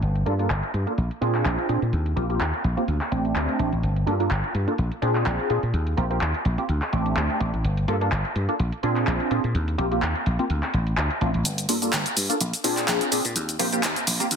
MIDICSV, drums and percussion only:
0, 0, Header, 1, 2, 480
1, 0, Start_track
1, 0, Key_signature, -2, "minor"
1, 0, Tempo, 476190
1, 24, Time_signature, 4, 2, 24, 8
1, 14477, End_track
2, 0, Start_track
2, 0, Title_t, "Drums"
2, 25, Note_on_c, 9, 42, 57
2, 125, Note_off_c, 9, 42, 0
2, 157, Note_on_c, 9, 42, 36
2, 257, Note_off_c, 9, 42, 0
2, 266, Note_on_c, 9, 42, 85
2, 366, Note_off_c, 9, 42, 0
2, 398, Note_on_c, 9, 42, 35
2, 498, Note_off_c, 9, 42, 0
2, 506, Note_on_c, 9, 39, 106
2, 507, Note_on_c, 9, 42, 58
2, 607, Note_off_c, 9, 39, 0
2, 607, Note_off_c, 9, 42, 0
2, 638, Note_on_c, 9, 42, 36
2, 739, Note_off_c, 9, 42, 0
2, 746, Note_on_c, 9, 42, 79
2, 847, Note_off_c, 9, 42, 0
2, 878, Note_on_c, 9, 42, 37
2, 979, Note_off_c, 9, 42, 0
2, 987, Note_on_c, 9, 42, 60
2, 1087, Note_off_c, 9, 42, 0
2, 1119, Note_on_c, 9, 42, 36
2, 1220, Note_off_c, 9, 42, 0
2, 1227, Note_on_c, 9, 42, 84
2, 1328, Note_off_c, 9, 42, 0
2, 1358, Note_on_c, 9, 39, 34
2, 1358, Note_on_c, 9, 42, 36
2, 1459, Note_off_c, 9, 39, 0
2, 1459, Note_off_c, 9, 42, 0
2, 1466, Note_on_c, 9, 39, 116
2, 1467, Note_on_c, 9, 42, 62
2, 1567, Note_off_c, 9, 39, 0
2, 1568, Note_off_c, 9, 42, 0
2, 1598, Note_on_c, 9, 42, 35
2, 1699, Note_off_c, 9, 42, 0
2, 1705, Note_on_c, 9, 42, 82
2, 1806, Note_off_c, 9, 42, 0
2, 1837, Note_on_c, 9, 42, 35
2, 1938, Note_off_c, 9, 42, 0
2, 1945, Note_on_c, 9, 42, 58
2, 2046, Note_off_c, 9, 42, 0
2, 2077, Note_on_c, 9, 42, 35
2, 2177, Note_off_c, 9, 42, 0
2, 2185, Note_on_c, 9, 42, 85
2, 2286, Note_off_c, 9, 42, 0
2, 2317, Note_on_c, 9, 42, 36
2, 2418, Note_off_c, 9, 42, 0
2, 2426, Note_on_c, 9, 39, 103
2, 2426, Note_on_c, 9, 42, 55
2, 2526, Note_off_c, 9, 39, 0
2, 2527, Note_off_c, 9, 42, 0
2, 2557, Note_on_c, 9, 42, 36
2, 2658, Note_off_c, 9, 42, 0
2, 2665, Note_on_c, 9, 42, 78
2, 2766, Note_off_c, 9, 42, 0
2, 2796, Note_on_c, 9, 42, 35
2, 2897, Note_off_c, 9, 42, 0
2, 2904, Note_on_c, 9, 42, 58
2, 3005, Note_off_c, 9, 42, 0
2, 3036, Note_on_c, 9, 39, 34
2, 3036, Note_on_c, 9, 42, 35
2, 3136, Note_off_c, 9, 39, 0
2, 3137, Note_off_c, 9, 42, 0
2, 3143, Note_on_c, 9, 42, 79
2, 3244, Note_off_c, 9, 42, 0
2, 3275, Note_on_c, 9, 42, 34
2, 3376, Note_off_c, 9, 42, 0
2, 3383, Note_on_c, 9, 39, 112
2, 3384, Note_on_c, 9, 42, 60
2, 3484, Note_off_c, 9, 39, 0
2, 3484, Note_off_c, 9, 42, 0
2, 3516, Note_on_c, 9, 42, 34
2, 3616, Note_off_c, 9, 42, 0
2, 3623, Note_on_c, 9, 42, 80
2, 3724, Note_off_c, 9, 42, 0
2, 3756, Note_on_c, 9, 42, 35
2, 3857, Note_off_c, 9, 42, 0
2, 3864, Note_on_c, 9, 42, 58
2, 3965, Note_off_c, 9, 42, 0
2, 3996, Note_on_c, 9, 42, 35
2, 4097, Note_off_c, 9, 42, 0
2, 4104, Note_on_c, 9, 42, 85
2, 4205, Note_off_c, 9, 42, 0
2, 4236, Note_on_c, 9, 42, 36
2, 4337, Note_off_c, 9, 42, 0
2, 4342, Note_on_c, 9, 39, 102
2, 4343, Note_on_c, 9, 42, 57
2, 4443, Note_off_c, 9, 39, 0
2, 4444, Note_off_c, 9, 42, 0
2, 4475, Note_on_c, 9, 42, 35
2, 4576, Note_off_c, 9, 42, 0
2, 4583, Note_on_c, 9, 42, 79
2, 4684, Note_off_c, 9, 42, 0
2, 4715, Note_on_c, 9, 42, 36
2, 4815, Note_off_c, 9, 42, 0
2, 4822, Note_on_c, 9, 42, 57
2, 4923, Note_off_c, 9, 42, 0
2, 4955, Note_on_c, 9, 42, 35
2, 5056, Note_off_c, 9, 42, 0
2, 5063, Note_on_c, 9, 42, 83
2, 5164, Note_off_c, 9, 42, 0
2, 5194, Note_on_c, 9, 39, 33
2, 5195, Note_on_c, 9, 42, 35
2, 5295, Note_off_c, 9, 39, 0
2, 5296, Note_off_c, 9, 42, 0
2, 5304, Note_on_c, 9, 39, 109
2, 5304, Note_on_c, 9, 42, 61
2, 5405, Note_off_c, 9, 39, 0
2, 5405, Note_off_c, 9, 42, 0
2, 5436, Note_on_c, 9, 42, 35
2, 5537, Note_off_c, 9, 42, 0
2, 5543, Note_on_c, 9, 42, 79
2, 5644, Note_off_c, 9, 42, 0
2, 5675, Note_on_c, 9, 42, 34
2, 5776, Note_off_c, 9, 42, 0
2, 5783, Note_on_c, 9, 42, 60
2, 5884, Note_off_c, 9, 42, 0
2, 5915, Note_on_c, 9, 42, 36
2, 6015, Note_off_c, 9, 42, 0
2, 6023, Note_on_c, 9, 42, 88
2, 6124, Note_off_c, 9, 42, 0
2, 6156, Note_on_c, 9, 42, 37
2, 6257, Note_off_c, 9, 42, 0
2, 6262, Note_on_c, 9, 39, 100
2, 6263, Note_on_c, 9, 42, 59
2, 6363, Note_off_c, 9, 39, 0
2, 6364, Note_off_c, 9, 42, 0
2, 6395, Note_on_c, 9, 42, 37
2, 6496, Note_off_c, 9, 42, 0
2, 6503, Note_on_c, 9, 42, 83
2, 6604, Note_off_c, 9, 42, 0
2, 6634, Note_on_c, 9, 42, 38
2, 6735, Note_off_c, 9, 42, 0
2, 6742, Note_on_c, 9, 42, 60
2, 6843, Note_off_c, 9, 42, 0
2, 6874, Note_on_c, 9, 39, 32
2, 6874, Note_on_c, 9, 42, 35
2, 6974, Note_off_c, 9, 39, 0
2, 6975, Note_off_c, 9, 42, 0
2, 6983, Note_on_c, 9, 42, 84
2, 7084, Note_off_c, 9, 42, 0
2, 7115, Note_on_c, 9, 42, 37
2, 7216, Note_off_c, 9, 42, 0
2, 7223, Note_on_c, 9, 39, 110
2, 7224, Note_on_c, 9, 42, 62
2, 7324, Note_off_c, 9, 39, 0
2, 7325, Note_off_c, 9, 42, 0
2, 7356, Note_on_c, 9, 42, 36
2, 7457, Note_off_c, 9, 42, 0
2, 7465, Note_on_c, 9, 42, 84
2, 7565, Note_off_c, 9, 42, 0
2, 7598, Note_on_c, 9, 42, 37
2, 7699, Note_off_c, 9, 42, 0
2, 7706, Note_on_c, 9, 42, 63
2, 7807, Note_off_c, 9, 42, 0
2, 7836, Note_on_c, 9, 42, 38
2, 7937, Note_off_c, 9, 42, 0
2, 7945, Note_on_c, 9, 42, 90
2, 8045, Note_off_c, 9, 42, 0
2, 8077, Note_on_c, 9, 42, 38
2, 8178, Note_off_c, 9, 42, 0
2, 8184, Note_on_c, 9, 39, 103
2, 8184, Note_on_c, 9, 42, 62
2, 8285, Note_off_c, 9, 39, 0
2, 8285, Note_off_c, 9, 42, 0
2, 8316, Note_on_c, 9, 42, 38
2, 8417, Note_off_c, 9, 42, 0
2, 8424, Note_on_c, 9, 42, 85
2, 8524, Note_off_c, 9, 42, 0
2, 8556, Note_on_c, 9, 42, 38
2, 8656, Note_off_c, 9, 42, 0
2, 8664, Note_on_c, 9, 42, 62
2, 8765, Note_off_c, 9, 42, 0
2, 8794, Note_on_c, 9, 42, 38
2, 8895, Note_off_c, 9, 42, 0
2, 8903, Note_on_c, 9, 42, 89
2, 9004, Note_off_c, 9, 42, 0
2, 9035, Note_on_c, 9, 39, 33
2, 9036, Note_on_c, 9, 42, 37
2, 9136, Note_off_c, 9, 39, 0
2, 9137, Note_off_c, 9, 42, 0
2, 9143, Note_on_c, 9, 39, 113
2, 9143, Note_on_c, 9, 42, 66
2, 9243, Note_off_c, 9, 39, 0
2, 9244, Note_off_c, 9, 42, 0
2, 9275, Note_on_c, 9, 42, 38
2, 9376, Note_off_c, 9, 42, 0
2, 9384, Note_on_c, 9, 42, 85
2, 9485, Note_off_c, 9, 42, 0
2, 9516, Note_on_c, 9, 42, 38
2, 9617, Note_off_c, 9, 42, 0
2, 9625, Note_on_c, 9, 42, 63
2, 9726, Note_off_c, 9, 42, 0
2, 9756, Note_on_c, 9, 42, 39
2, 9857, Note_off_c, 9, 42, 0
2, 9864, Note_on_c, 9, 42, 92
2, 9965, Note_off_c, 9, 42, 0
2, 9995, Note_on_c, 9, 42, 40
2, 10096, Note_off_c, 9, 42, 0
2, 10103, Note_on_c, 9, 39, 110
2, 10104, Note_on_c, 9, 42, 61
2, 10204, Note_off_c, 9, 39, 0
2, 10204, Note_off_c, 9, 42, 0
2, 10236, Note_on_c, 9, 42, 38
2, 10337, Note_off_c, 9, 42, 0
2, 10344, Note_on_c, 9, 42, 88
2, 10445, Note_off_c, 9, 42, 0
2, 10475, Note_on_c, 9, 42, 39
2, 10576, Note_off_c, 9, 42, 0
2, 10583, Note_on_c, 9, 42, 64
2, 10684, Note_off_c, 9, 42, 0
2, 10715, Note_on_c, 9, 39, 35
2, 10716, Note_on_c, 9, 42, 38
2, 10816, Note_off_c, 9, 39, 0
2, 10817, Note_off_c, 9, 42, 0
2, 10823, Note_on_c, 9, 42, 93
2, 10923, Note_off_c, 9, 42, 0
2, 10954, Note_on_c, 9, 42, 38
2, 11055, Note_off_c, 9, 42, 0
2, 11062, Note_on_c, 9, 39, 114
2, 11063, Note_on_c, 9, 42, 69
2, 11163, Note_off_c, 9, 39, 0
2, 11163, Note_off_c, 9, 42, 0
2, 11194, Note_on_c, 9, 42, 37
2, 11295, Note_off_c, 9, 42, 0
2, 11302, Note_on_c, 9, 42, 92
2, 11403, Note_off_c, 9, 42, 0
2, 11433, Note_on_c, 9, 42, 39
2, 11534, Note_off_c, 9, 42, 0
2, 11542, Note_on_c, 9, 42, 64
2, 11547, Note_on_c, 9, 82, 43
2, 11643, Note_off_c, 9, 42, 0
2, 11648, Note_off_c, 9, 82, 0
2, 11674, Note_on_c, 9, 42, 38
2, 11678, Note_on_c, 9, 82, 21
2, 11775, Note_off_c, 9, 42, 0
2, 11779, Note_off_c, 9, 82, 0
2, 11782, Note_on_c, 9, 46, 105
2, 11787, Note_on_c, 9, 82, 77
2, 11883, Note_off_c, 9, 46, 0
2, 11887, Note_off_c, 9, 82, 0
2, 11914, Note_on_c, 9, 42, 39
2, 11919, Note_on_c, 9, 82, 33
2, 12015, Note_off_c, 9, 42, 0
2, 12020, Note_off_c, 9, 82, 0
2, 12023, Note_on_c, 9, 39, 115
2, 12023, Note_on_c, 9, 42, 65
2, 12028, Note_on_c, 9, 82, 40
2, 12123, Note_off_c, 9, 39, 0
2, 12124, Note_off_c, 9, 42, 0
2, 12129, Note_off_c, 9, 82, 0
2, 12155, Note_on_c, 9, 42, 39
2, 12159, Note_on_c, 9, 82, 22
2, 12255, Note_off_c, 9, 42, 0
2, 12260, Note_off_c, 9, 82, 0
2, 12264, Note_on_c, 9, 46, 84
2, 12268, Note_on_c, 9, 82, 72
2, 12365, Note_off_c, 9, 46, 0
2, 12369, Note_off_c, 9, 82, 0
2, 12396, Note_on_c, 9, 42, 40
2, 12401, Note_on_c, 9, 82, 33
2, 12497, Note_off_c, 9, 42, 0
2, 12502, Note_off_c, 9, 82, 0
2, 12505, Note_on_c, 9, 42, 67
2, 12509, Note_on_c, 9, 82, 43
2, 12606, Note_off_c, 9, 42, 0
2, 12610, Note_off_c, 9, 82, 0
2, 12635, Note_on_c, 9, 42, 39
2, 12640, Note_on_c, 9, 82, 21
2, 12736, Note_off_c, 9, 42, 0
2, 12741, Note_off_c, 9, 82, 0
2, 12744, Note_on_c, 9, 46, 102
2, 12748, Note_on_c, 9, 82, 75
2, 12845, Note_off_c, 9, 46, 0
2, 12849, Note_off_c, 9, 82, 0
2, 12875, Note_on_c, 9, 39, 36
2, 12876, Note_on_c, 9, 42, 39
2, 12881, Note_on_c, 9, 82, 31
2, 12976, Note_off_c, 9, 39, 0
2, 12977, Note_off_c, 9, 42, 0
2, 12981, Note_off_c, 9, 82, 0
2, 12983, Note_on_c, 9, 39, 120
2, 12983, Note_on_c, 9, 42, 68
2, 12988, Note_on_c, 9, 82, 44
2, 13084, Note_off_c, 9, 39, 0
2, 13084, Note_off_c, 9, 42, 0
2, 13089, Note_off_c, 9, 82, 0
2, 13115, Note_on_c, 9, 42, 40
2, 13119, Note_on_c, 9, 82, 21
2, 13215, Note_off_c, 9, 42, 0
2, 13220, Note_off_c, 9, 82, 0
2, 13224, Note_on_c, 9, 46, 88
2, 13229, Note_on_c, 9, 82, 76
2, 13325, Note_off_c, 9, 46, 0
2, 13329, Note_off_c, 9, 82, 0
2, 13355, Note_on_c, 9, 42, 40
2, 13359, Note_on_c, 9, 82, 33
2, 13455, Note_off_c, 9, 42, 0
2, 13460, Note_off_c, 9, 82, 0
2, 13464, Note_on_c, 9, 42, 64
2, 13469, Note_on_c, 9, 82, 41
2, 13565, Note_off_c, 9, 42, 0
2, 13570, Note_off_c, 9, 82, 0
2, 13596, Note_on_c, 9, 42, 38
2, 13600, Note_on_c, 9, 82, 20
2, 13696, Note_off_c, 9, 42, 0
2, 13701, Note_off_c, 9, 82, 0
2, 13704, Note_on_c, 9, 46, 106
2, 13708, Note_on_c, 9, 82, 75
2, 13805, Note_off_c, 9, 46, 0
2, 13809, Note_off_c, 9, 82, 0
2, 13836, Note_on_c, 9, 42, 40
2, 13840, Note_on_c, 9, 82, 32
2, 13936, Note_off_c, 9, 42, 0
2, 13941, Note_off_c, 9, 82, 0
2, 13943, Note_on_c, 9, 39, 116
2, 13943, Note_on_c, 9, 42, 60
2, 13948, Note_on_c, 9, 82, 41
2, 14044, Note_off_c, 9, 39, 0
2, 14044, Note_off_c, 9, 42, 0
2, 14049, Note_off_c, 9, 82, 0
2, 14075, Note_on_c, 9, 42, 40
2, 14080, Note_on_c, 9, 82, 21
2, 14176, Note_off_c, 9, 42, 0
2, 14181, Note_off_c, 9, 82, 0
2, 14184, Note_on_c, 9, 46, 93
2, 14188, Note_on_c, 9, 82, 73
2, 14284, Note_off_c, 9, 46, 0
2, 14289, Note_off_c, 9, 82, 0
2, 14316, Note_on_c, 9, 42, 39
2, 14320, Note_on_c, 9, 82, 32
2, 14416, Note_off_c, 9, 42, 0
2, 14421, Note_off_c, 9, 82, 0
2, 14424, Note_on_c, 9, 42, 66
2, 14429, Note_on_c, 9, 82, 42
2, 14477, Note_off_c, 9, 42, 0
2, 14477, Note_off_c, 9, 82, 0
2, 14477, End_track
0, 0, End_of_file